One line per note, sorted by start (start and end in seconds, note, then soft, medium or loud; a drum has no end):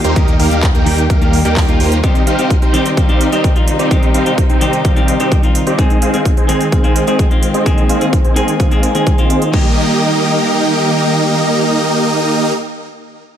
0.00 0.13 D#3 medium
0.00 2.00 D#3 medium
0.00 0.13 G3 medium
0.00 0.13 A#3 medium
0.00 2.00 A#3 medium
0.00 0.14 F4 medium
0.00 2.00 G4 medium
0.04 0.14 D#2 medium
0.04 0.14 A#3 medium
0.04 0.14 D#4 medium
0.04 0.14 G4 medium
0.04 0.14 A#4 medium
0.04 0.14 C5 medium
0.04 closed hi-hat medium
0.15 0.37 D#2 medium
0.15 0.48 D#3 medium
0.15 0.48 G3 medium
0.15 0.34 A#3 medium
0.15 0.49 A#3 medium
0.15 0.34 D#4 medium
0.15 0.34 G4 medium
0.15 0.49 G4 loud
0.15 0.34 A#4 medium
0.15 0.34 D#5 loud
0.15 kick loud
0.15 closed hi-hat soft
0.28 closed hi-hat soft
0.40 0.72 D#2 loud
0.40 0.67 A#3 medium
0.40 0.67 D#4 medium
0.40 0.67 G4 medium
0.40 0.67 A#4 medium
0.40 0.67 F5 medium
0.40 open hi-hat loud
0.51 0.57 D#3 medium
0.51 0.57 G3 medium
0.51 0.57 A#3 medium
0.51 0.58 G4 medium
0.51 closed hi-hat soft
0.63 kick loud
0.63 clap loud
0.63 closed hi-hat soft
0.75 1.08 D#2 medium
0.75 1.03 A#3 medium
0.75 1.03 D#4 medium
0.75 1.03 G4 medium
0.75 1.03 A#4 medium
0.75 1.03 G5 medium
0.75 closed hi-hat soft
0.86 1.18 D#3 medium
0.86 1.19 G3 medium
0.86 1.19 A#3 medium
0.86 1.19 G4 medium
0.86 open hi-hat loud
0.98 closed hi-hat soft
1.10 1.43 D#2 loud
1.10 1.38 A#3 medium
1.10 1.38 D#4 medium
1.10 1.38 G4 medium
1.10 1.38 A#4 medium
1.10 1.38 F5 medium
1.10 kick loud
1.10 closed hi-hat soft
1.21 1.42 D#3 loud
1.21 1.43 G3 medium
1.21 1.43 A#3 medium
1.21 1.43 G4 medium
1.21 closed hi-hat soft
1.33 open hi-hat loud
1.44 1.78 D#2 medium
1.44 1.65 D#3 medium
1.44 1.66 G3 medium
1.44 1.77 A#3 medium
1.44 1.66 A#3 medium
1.44 1.77 D#4 medium
1.44 1.77 G4 medium
1.44 1.66 G4 loud
1.44 1.77 A#4 medium
1.44 1.77 G5 medium
1.44 closed hi-hat soft
1.57 kick loud
1.57 clap loud
1.57 open hi-hat medium
1.68 2.00 D#3 medium
1.68 2.01 G3 medium
1.68 2.01 A#3 medium
1.68 2.01 F4 medium
1.68 closed hi-hat soft
1.80 2.01 D#2 medium
1.80 1.98 A#3 medium
1.80 1.98 D#4 medium
1.80 1.98 G4 medium
1.80 1.98 A#4 medium
1.80 1.98 C5 medium
1.80 open hi-hat loud
1.92 closed hi-hat medium
2.03 5.75 C3 medium
2.03 2.36 D#3 medium
2.03 5.75 G3 medium
2.03 2.36 G3 medium
2.03 2.21 C4 medium
2.03 2.36 C4 medium
2.03 5.75 D#4 medium
2.03 2.21 D#4 medium
2.03 2.21 G4 medium
2.03 2.36 G4 loud
2.03 2.21 C5 medium
2.03 2.21 D#5 loud
2.03 kick loud
2.03 closed hi-hat soft
2.15 closed hi-hat soft
2.27 2.55 C4 medium
2.27 2.55 D#4 medium
2.27 2.55 G4 medium
2.27 2.55 C5 medium
2.27 2.55 F5 loud
2.27 closed hi-hat medium
2.38 2.44 D#3 medium
2.38 2.45 G3 medium
2.38 2.45 C4 medium
2.38 2.45 G4 medium
2.38 closed hi-hat soft
2.50 kick loud
2.50 closed hi-hat soft
2.62 2.90 C4 medium
2.62 2.90 D#4 medium
2.62 2.90 G4 medium
2.62 2.90 C5 medium
2.62 2.90 G5 medium
2.62 closed hi-hat soft
2.73 3.06 D#3 medium
2.73 3.06 G3 medium
2.73 3.06 C4 medium
2.73 3.06 G4 medium
2.73 closed hi-hat medium
2.86 closed hi-hat soft
2.97 3.25 C4 medium
2.97 3.25 D#4 medium
2.97 3.25 G4 medium
2.97 3.25 C5 medium
2.97 3.25 F5 medium
2.97 kick loud
2.97 closed hi-hat soft
3.08 3.30 D#3 medium
3.08 3.30 G3 medium
3.08 3.30 C4 medium
3.08 3.30 G4 loud
3.08 closed hi-hat soft
3.21 closed hi-hat medium
3.32 3.53 D#3 medium
3.32 3.53 G3 medium
3.32 3.50 C4 medium
3.32 3.53 C4 medium
3.32 3.50 D#4 medium
3.32 3.50 G4 medium
3.32 3.53 G4 loud
3.32 3.50 C5 medium
3.32 3.50 D#5 medium
3.32 closed hi-hat soft
3.44 kick loud
3.44 closed hi-hat soft
3.55 3.88 D#3 medium
3.55 3.88 G3 medium
3.55 3.88 C4 medium
3.55 3.89 F4 medium
3.55 closed hi-hat soft
3.68 closed hi-hat medium
3.79 3.89 C4 medium
3.79 3.89 D#4 medium
3.79 3.89 G4 medium
3.79 3.89 C5 medium
3.79 3.89 D5 medium
3.79 closed hi-hat soft
3.90 4.23 D#3 medium
3.90 4.23 G3 medium
3.90 4.08 C4 medium
3.90 4.23 C4 medium
3.90 4.08 D#4 medium
3.90 4.08 G4 medium
3.90 4.24 G4 medium
3.90 4.08 C5 medium
3.90 4.08 D#5 medium
3.90 kick loud
3.90 closed hi-hat soft
4.03 closed hi-hat soft
4.14 4.42 C4 medium
4.14 4.42 D#4 medium
4.14 4.42 G4 medium
4.14 4.42 C5 medium
4.14 4.42 F5 medium
4.14 closed hi-hat medium
4.25 4.32 D#3 medium
4.25 4.32 G3 medium
4.25 4.32 C4 medium
4.25 4.32 G4 medium
4.25 closed hi-hat soft
4.38 kick loud
4.38 closed hi-hat medium
4.50 4.78 C4 medium
4.50 4.78 D#4 medium
4.50 4.78 G4 medium
4.50 4.78 C5 medium
4.50 4.78 G5 medium
4.50 closed hi-hat soft
4.61 4.93 D#3 medium
4.61 4.94 G3 medium
4.61 4.94 C4 medium
4.61 4.94 G4 medium
4.61 closed hi-hat medium
4.73 closed hi-hat soft
4.85 5.13 C4 medium
4.85 5.13 D#4 medium
4.85 5.13 G4 medium
4.85 5.13 C5 medium
4.85 5.13 F5 medium
4.85 kick loud
4.85 closed hi-hat soft
4.96 5.17 D#3 loud
4.96 5.18 G3 medium
4.96 5.18 C4 medium
4.96 5.18 G4 loud
4.96 closed hi-hat soft
5.08 closed hi-hat medium
5.19 5.40 D#3 medium
5.19 5.41 G3 medium
5.19 5.37 C4 medium
5.19 5.41 C4 medium
5.19 5.37 D#4 medium
5.19 5.37 G4 medium
5.19 5.41 G4 loud
5.19 5.37 C5 medium
5.19 5.37 D#5 medium
5.19 closed hi-hat medium
5.32 kick loud
5.32 closed hi-hat soft
5.43 5.75 D#3 medium
5.43 5.76 G3 medium
5.43 5.76 C4 medium
5.43 5.76 F4 medium
5.43 closed hi-hat soft
5.55 closed hi-hat medium
5.67 5.77 C4 medium
5.67 5.77 D#4 medium
5.67 5.77 G4 medium
5.67 5.77 C5 medium
5.67 5.77 D5 medium
5.67 closed hi-hat medium
5.78 6.11 D#3 medium
5.78 9.50 D#3 medium
5.78 6.11 G#3 medium
5.78 7.64 G#3 medium
5.78 5.96 C4 medium
5.78 6.11 C4 medium
5.78 9.50 C4 medium
5.78 5.96 D#4 medium
5.78 5.96 G#4 medium
5.78 6.11 G#4 medium
5.78 5.96 C5 medium
5.78 5.96 D#5 loud
5.78 kick loud
5.78 closed hi-hat soft
5.90 closed hi-hat soft
6.02 6.30 C4 medium
6.02 6.30 D#4 medium
6.02 6.30 G#4 medium
6.02 6.30 C5 medium
6.02 6.30 F5 medium
6.02 closed hi-hat medium
6.13 6.19 D#3 medium
6.13 6.20 G#3 medium
6.13 6.20 C4 medium
6.13 6.20 G#4 medium
6.13 closed hi-hat soft
6.25 kick loud
6.25 closed hi-hat medium
6.37 6.65 C4 medium
6.37 6.65 D#4 medium
6.37 6.65 G#4 medium
6.37 6.65 C5 medium
6.37 6.65 G#5 medium
6.37 closed hi-hat soft
6.48 6.81 D#3 medium
6.48 6.81 G#3 medium
6.48 6.81 C4 medium
6.48 6.82 G#4 medium
6.48 closed hi-hat medium
6.61 closed hi-hat medium
6.72 7.00 C4 medium
6.72 7.00 D#4 medium
6.72 7.00 G#4 medium
6.72 7.00 C5 medium
6.72 7.00 F5 medium
6.72 kick loud
6.72 closed hi-hat medium
6.83 7.05 D#3 loud
6.83 7.05 G#3 medium
6.83 7.05 C4 medium
6.83 7.05 G#4 medium
6.83 closed hi-hat soft
6.96 closed hi-hat medium
7.07 7.28 D#3 medium
7.07 7.28 G#3 medium
7.07 7.25 C4 medium
7.07 7.28 C4 medium
7.07 7.25 D#4 medium
7.07 7.25 G#4 medium
7.07 7.28 G#4 loud
7.07 7.25 C5 medium
7.07 7.25 D#5 medium
7.07 closed hi-hat medium
7.19 kick loud
7.19 closed hi-hat medium
7.30 7.63 D#3 medium
7.30 7.63 G#3 medium
7.30 7.63 C4 medium
7.30 7.64 F4 medium
7.30 closed hi-hat soft
7.43 closed hi-hat medium
7.54 7.64 C4 medium
7.54 7.64 D#4 medium
7.54 7.64 G#4 medium
7.54 7.64 C5 medium
7.54 7.64 D#5 medium
7.54 closed hi-hat medium
7.65 7.98 D#3 medium
7.65 7.98 G#3 medium
7.65 9.52 A#3 medium
7.65 7.83 C4 medium
7.65 7.98 C4 medium
7.65 7.84 D#4 medium
7.65 7.83 G#4 medium
7.65 7.99 G#4 medium
7.65 7.83 C5 medium
7.65 7.84 D#5 loud
7.65 kick loud
7.65 closed hi-hat soft
7.78 closed hi-hat soft
7.89 8.17 C4 medium
7.89 8.17 D#4 medium
7.89 8.17 G#4 medium
7.89 8.17 C5 medium
7.89 8.17 F5 loud
7.89 closed hi-hat medium
8.01 8.07 D#3 medium
8.01 8.07 G#3 medium
8.01 8.07 C4 medium
8.01 8.07 G#4 medium
8.01 closed hi-hat medium
8.13 kick loud
8.13 closed hi-hat medium
8.25 8.53 C4 medium
8.25 8.53 D#4 medium
8.25 8.53 G#4 medium
8.25 8.53 C5 medium
8.25 8.53 G#5 medium
8.25 closed hi-hat soft
8.36 8.68 D#3 medium
8.36 8.69 G#3 medium
8.36 8.69 C4 medium
8.36 8.69 G#4 medium
8.36 closed hi-hat medium
8.48 closed hi-hat medium
8.60 8.88 C4 medium
8.60 8.88 D#4 medium
8.60 8.88 G#4 medium
8.60 8.88 C5 medium
8.60 8.88 F5 medium
8.60 kick loud
8.60 closed hi-hat medium
8.71 8.92 D#3 medium
8.71 8.93 G#3 medium
8.71 8.93 C4 medium
8.71 8.93 G#4 medium
8.71 closed hi-hat soft
8.83 closed hi-hat medium
8.94 9.15 D#3 medium
8.94 9.15 G#3 medium
8.94 9.27 C4 medium
8.94 9.16 C4 medium
8.94 9.27 D#4 medium
8.94 9.27 G#4 medium
8.94 9.16 G#4 medium
8.94 9.27 C5 medium
8.94 9.27 G#5 medium
8.94 closed hi-hat medium
9.07 kick loud
9.07 closed hi-hat medium
9.18 9.50 D#3 medium
9.18 9.51 G#3 medium
9.18 9.51 C4 medium
9.18 9.51 F4 medium
9.18 closed hi-hat soft
9.30 9.48 C4 medium
9.30 9.48 D#4 medium
9.30 9.48 G#4 medium
9.30 9.48 C5 medium
9.30 9.48 D#5 medium
9.30 closed hi-hat medium
9.42 closed hi-hat medium
9.52 12.50 D#3 medium
9.52 12.52 D#3 medium
9.52 12.51 G3 medium
9.52 12.52 A#3 medium
9.52 12.52 D#4 medium
9.52 12.52 G4 medium
9.52 12.54 G4 medium
9.52 12.52 A#4 medium
9.52 12.52 D#5 medium
9.52 kick loud
9.52 crash medium